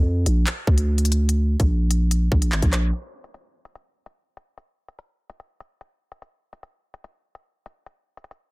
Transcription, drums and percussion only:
0.26 closed hi-hat
0.47 clap, closed hi-hat
0.67 kick
0.78 closed hi-hat
0.98 closed hi-hat
1.05 closed hi-hat
1.12 closed hi-hat
1.29 closed hi-hat
1.60 kick, closed hi-hat
1.91 closed hi-hat
2.11 closed hi-hat
2.32 kick
2.42 closed hi-hat
2.52 clap
2.62 kick, closed hi-hat
2.73 cross-stick, clap, closed hi-hat
2.93 closed hi-hat
3.24 closed hi-hat
3.34 closed hi-hat
3.65 closed hi-hat
3.75 closed hi-hat
4.06 closed hi-hat
4.37 closed hi-hat
4.58 closed hi-hat
4.88 closed hi-hat
4.99 closed hi-hat
5.30 closed hi-hat
5.40 closed hi-hat
5.60 closed hi-hat
5.81 closed hi-hat
6.12 closed hi-hat
6.22 closed hi-hat
6.53 closed hi-hat
6.63 closed hi-hat
6.94 closed hi-hat
7.04 closed hi-hat
7.35 closed hi-hat
7.66 closed hi-hat
7.86 closed hi-hat
8.17 closed hi-hat
8.24 closed hi-hat
8.31 closed hi-hat

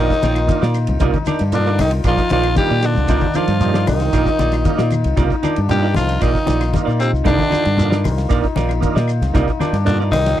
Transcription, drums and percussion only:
0.10 kick, snare, shekere
0.22 snare, ride bell, high conga, shekere
0.35 ride bell, claves, shekere
0.49 kick, ride bell, high conga, shekere
0.62 snare, shekere
0.74 snare, ride bell, claves, shekere
0.87 ride bell, low conga, shekere
1.00 kick, ride bell, low conga, shekere
1.13 kick, high conga, shekere
1.26 snare, ride bell, high conga, claves, shekere
1.39 snare, ride bell, shekere
1.52 ride bell, low conga, shekere
1.67 shekere
1.78 open hi-hat, high conga, claves, shekere
1.91 ride bell, shekere
2.04 kick, ride bell, claves, shekere
2.17 kick, snare, shekere
2.29 snare, ride bell, high conga, shekere
2.43 ride bell, claves, shekere
2.56 kick, snare, ride bell, high conga, shekere
2.70 shekere
2.82 snare, ride bell, claves, shekere
2.95 low conga, shekere
3.07 kick, ride bell, low conga, shekere
3.21 kick, high conga, shekere
3.34 snare, ride bell, high conga, claves, shekere
3.48 snare, ride bell, shekere
3.61 ride bell, low conga, shekere
3.74 snare, shekere
3.87 open hi-hat, high conga, claves, shekere
4.00 snare, ride bell, shekere
4.13 kick, snare, ride bell, claves, shekere
4.26 kick, snare, shekere
4.39 ride bell, high conga, shekere
4.52 snare, ride bell, claves, shekere
4.65 kick, ride bell, high conga, shekere
4.79 snare, shekere
4.90 ride bell, high conga, claves, shekere
5.04 ride bell, shekere
5.17 kick, snare, ride bell, low conga, shekere
5.30 kick, shekere
5.43 ride bell, high conga, claves, shekere
5.56 ride bell, shekere
5.69 ride bell, low conga, shekere
5.84 shekere
5.94 snare, open hi-hat, high conga, claves, shekere
6.09 ride bell, shekere
6.21 kick, ride bell, claves, shekere
6.35 kick, shekere
6.47 snare, ride bell, high conga, shekere
6.61 snare, ride bell, claves, shekere
6.73 kick, snare, ride bell, high conga, shekere
6.89 shekere
6.99 ride bell, claves, shekere
7.15 shekere
7.25 kick, ride bell, low conga, shekere
7.38 kick, high conga, shekere
7.51 snare, ride bell, high conga, claves, shekere
7.65 ride bell, shekere
7.77 ride bell, low conga, shekere
7.92 snare, shekere
8.04 open hi-hat, high conga, claves, shekere
8.18 snare, ride bell, shekere
8.30 kick, snare, ride bell, claves, shekere
8.44 kick, shekere
8.56 snare, ride bell, high conga, shekere
8.69 ride bell, claves, shekere
8.82 kick, ride bell, high conga, shekere
8.96 snare, shekere
9.08 ride bell, claves, shekere
9.22 snare, ride bell, low conga, shekere
9.35 kick, snare, ride bell, low conga, shekere
9.48 kick, shekere
9.60 snare, ride bell, high conga, claves, shekere
9.74 snare, ride bell, shekere
9.87 ride bell, low conga, shekere
10.01 shekere
10.12 open hi-hat, high conga, claves, shekere
10.26 snare, ride bell, shekere

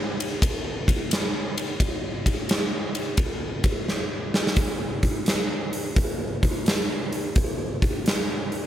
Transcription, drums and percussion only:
0.20 ride
0.42 kick, ride
0.88 kick, ride
1.11 snare, ride
1.58 ride
1.80 kick, ride
2.26 kick, ride
2.49 snare, ride
2.95 ride
3.17 kick, ride
3.64 kick, ride
3.88 snare
4.34 snare
4.47 snare
4.56 kick, open hi-hat
5.03 kick, open hi-hat
5.26 snare, open hi-hat
5.73 open hi-hat
5.96 kick, open hi-hat
6.43 kick, open hi-hat
6.66 snare, open hi-hat
7.13 open hi-hat
7.36 kick, open hi-hat
7.82 kick, open hi-hat
8.06 snare, open hi-hat
8.52 open hi-hat

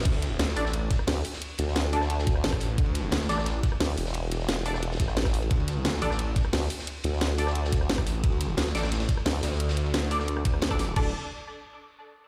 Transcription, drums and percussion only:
0.01 snare, ride
0.05 kick, closed hi-hat, ride, crash
0.14 ride
0.22 snare, closed hi-hat, ride
0.39 snare, closed hi-hat, ride
0.48 snare
0.56 open hi-hat, ride
0.65 cross-stick, snare
0.73 closed hi-hat, ride
0.91 kick, snare, closed hi-hat, ride
0.99 cross-stick
1.07 snare, closed hi-hat, open hi-hat
1.16 ride
1.24 open hi-hat, ride
1.33 snare
1.42 closed hi-hat, ride
1.58 snare, closed hi-hat, ride
1.68 snare
1.75 snare, closed hi-hat, ride
1.84 snare
1.93 open hi-hat, ride
2.01 cross-stick, snare
2.10 closed hi-hat, ride
2.19 snare
2.26 kick, snare, closed hi-hat, ride
2.35 cross-stick
2.44 snare, closed hi-hat, ride
2.53 kick, cross-stick
2.60 snare, open hi-hat, ride
2.78 kick, closed hi-hat, ride
2.86 ride
2.95 snare, closed hi-hat, ride
3.12 snare, closed hi-hat, ride
3.20 snare
3.29 snare, open hi-hat, ride
3.38 cross-stick, snare
3.45 snare, closed hi-hat, ride
3.63 kick, snare, closed hi-hat, ride
3.72 cross-stick
3.80 snare, closed hi-hat, open hi-hat
3.88 ride
3.98 open hi-hat, ride
4.06 snare
4.14 closed hi-hat, ride
4.31 snare, closed hi-hat, ride
4.40 snare
4.49 snare, closed hi-hat, ride
4.57 snare
4.66 open hi-hat, ride
4.74 cross-stick, snare
4.82 closed hi-hat, ride
4.91 snare
5.00 kick, snare, closed hi-hat, ride
5.08 cross-stick, snare
5.16 snare, closed hi-hat, ride
5.25 kick, cross-stick, snare, ride
5.34 snare, open hi-hat
5.42 ride
5.50 kick, closed hi-hat, ride
5.60 ride
5.68 snare, closed hi-hat, ride
5.85 snare, closed hi-hat, ride
5.94 snare
6.02 open hi-hat, ride
6.11 cross-stick, snare
6.19 closed hi-hat, ride
6.36 kick, snare, closed hi-hat, ride
6.45 cross-stick
6.53 snare, closed hi-hat, open hi-hat
6.61 ride
6.70 open hi-hat, ride
6.79 snare
6.87 closed hi-hat, ride
7.04 snare, closed hi-hat, ride
7.13 snare
7.21 snare, closed hi-hat, ride
7.29 snare
7.38 open hi-hat, ride
7.47 cross-stick, snare
7.55 closed hi-hat, ride
7.65 snare
7.72 kick, snare, closed hi-hat, ride
7.81 cross-stick
7.89 snare, closed hi-hat, ride
7.98 kick, cross-stick
8.07 snare, open hi-hat, ride
8.24 kick, closed hi-hat, ride
8.32 ride
8.41 snare, closed hi-hat, ride
8.57 snare, closed hi-hat, ride
8.66 snare
8.75 snare, open hi-hat, ride
8.83 cross-stick, snare, ride
8.92 snare, closed hi-hat, ride
9.00 snare, ride
9.09 kick, snare, closed hi-hat, ride
9.17 cross-stick
9.26 snare, closed hi-hat, open hi-hat
9.34 ride
9.43 snare, open hi-hat, ride
9.52 snare
9.60 closed hi-hat, ride
9.69 snare, ride
9.77 snare, closed hi-hat
9.86 ride
9.94 snare, closed hi-hat, ride
10.02 snare
10.11 open hi-hat, ride
10.19 cross-stick, snare
10.28 closed hi-hat
10.37 cross-stick
10.45 kick, closed hi-hat, ride
10.54 cross-stick
10.61 snare, closed hi-hat, ride
10.71 kick, cross-stick
10.79 snare, open hi-hat, ride
10.96 kick, crash

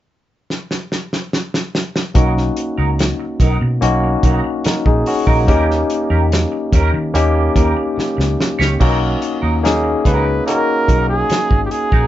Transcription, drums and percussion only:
0.50 snare
0.71 snare
0.92 snare
1.13 snare
1.33 snare
1.54 snare
1.75 snare
1.96 snare
2.15 kick, closed hi-hat
2.37 snare
2.57 closed hi-hat
2.99 snare, closed hi-hat
3.40 kick, closed hi-hat
3.82 closed hi-hat
4.23 kick, closed hi-hat
4.64 snare, closed hi-hat
4.86 kick
5.06 open hi-hat
5.27 kick
5.48 kick, closed hi-hat
5.71 snare
5.90 closed hi-hat
6.32 snare, closed hi-hat
6.73 kick, closed hi-hat
7.15 closed hi-hat
7.56 kick, closed hi-hat
7.99 snare
8.20 snare
8.41 snare
8.61 snare
8.81 kick, crash
9.22 closed hi-hat
9.65 snare, closed hi-hat
10.05 kick, closed hi-hat
10.48 closed hi-hat
10.88 kick, closed hi-hat
11.30 snare, closed hi-hat
11.51 kick
11.71 closed hi-hat
11.92 kick

